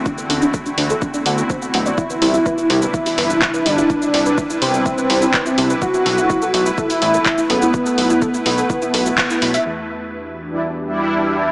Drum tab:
CC |----------------|----------------|----------------|----------------|
HH |--o---o---o---o-|--o---o--oo---o-|--o---o---o---o-|--o---o--oo---o-|
SH |xx-xxx-xxx-xxx-x|xx-xxx-xxx-xxx-x|xx-xxx-xxx-xxx-x|xx-xxx-xxx-xxx-x|
CP |----------------|------------x---|------------x---|------------x---|
BD |o---o---o---o---|o---o---o---o---|o---o---o---o---|o---o---o---o---|

CC |----------------|x---------------|
HH |--o---o---o---oo|----------------|
SH |xx-xxx-xxx-xxx-x|----------------|
CP |------------x---|----------------|
BD |o---o---o---o---|----------------|